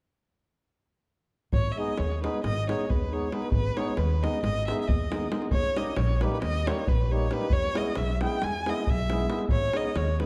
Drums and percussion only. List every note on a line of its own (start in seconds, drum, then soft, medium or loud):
1.53 davul low medium
1.88 davul high soft
1.98 davul high medium
2.12 davul high soft
2.24 davul high medium
2.34 davul high soft
2.44 davul high medium
2.69 davul high medium
2.90 davul low medium
3.32 davul high soft
3.42 davul high soft
3.52 davul low medium
3.77 davul high medium
3.88 davul high soft
3.97 davul high medium
4.11 davul high soft
4.24 davul high medium
4.34 davul high soft
4.44 davul high medium
4.68 davul high medium
4.89 davul low medium
5.12 davul high medium
5.32 davul high medium
5.42 davul high soft
5.51 davul low medium
5.76 davul high medium
5.87 davul high soft
5.96 davul high medium
6.09 davul high soft
6.21 davul high medium
6.32 davul high soft
6.42 davul high medium
6.67 davul high medium
6.87 davul low medium
7.31 davul high medium
7.41 davul high soft
7.50 davul low medium
7.63 davul high soft
7.75 davul high medium
7.86 davul high soft
7.95 davul high medium
8.09 davul high soft
8.21 davul high medium
8.32 davul high soft
8.42 davul high medium
8.66 davul high medium
8.77 davul high soft
8.87 davul low medium
9.10 davul high medium
9.20 davul high soft
9.30 davul high medium
9.39 davul high soft
9.49 davul low medium
9.73 davul high medium
9.85 davul high soft
9.96 davul high medium
10.08 davul high soft
10.20 davul high medium